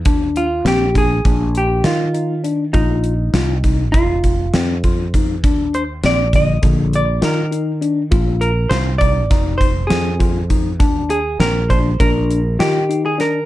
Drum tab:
HH |xxxxxxxxx|xxxxxxxxx|xxxxxxxxx|xxxxxxxxx|
SD |--o---o--|--o---o--|--o---o--|--o-o-o--|
BD |o--oo----|o--ooo-oo|o--oo----|o--ooo-oo|

HH |xxxxxxxxx|
SD |--o---o-o|
BD |o--oo----|